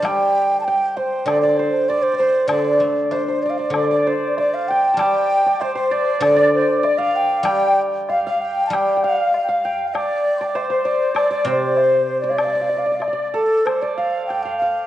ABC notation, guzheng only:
X:1
M:2/4
L:1/8
Q:1/4=97
K:none
V:1 name="Guzheng" clef=bass
[D,G,]4 | D,4 | D, A, D2 | D,4 |
G,4 | D,4 | G,4 | G,4- |
G,2 z2 | z C,3- | C,3 z | z4 |]